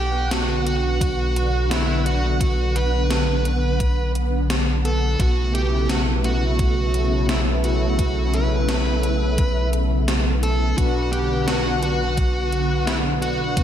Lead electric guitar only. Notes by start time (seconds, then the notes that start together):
Already playing: G4
0.32 F#4
0.67 F#4
1.71 E4
2.06 F#4
2.76 B4
4.85 A4
5.20 F#4
5.55 G4
5.90 F#4
6.25 F#4
7.30 E4
7.65 F#4
8.34 B4
10.43 A4
10.78 F#4
11.12 G4
11.47 F#4
11.83 F#4
12.87 E4
13.22 F#4